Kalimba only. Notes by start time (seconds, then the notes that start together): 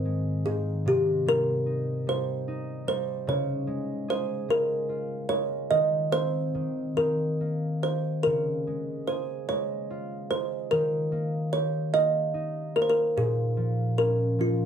Already playing: C5
0.46 G#4
0.88 G4
1.29 A#4
2.09 C5
2.88 C5
3.29 C#5
4.10 C5
4.50 A#4
5.29 C#5
5.71 D#5
6.12 C5
6.97 A#4
7.83 C5
8.23 A#4
9.08 C5
9.49 C#5
10.31 C5
10.71 A#4
11.53 C#5
11.94 D#5
12.76 A#4
12.82 C5
12.90 A#4
13.18 G#4
13.98 A#4
14.41 F4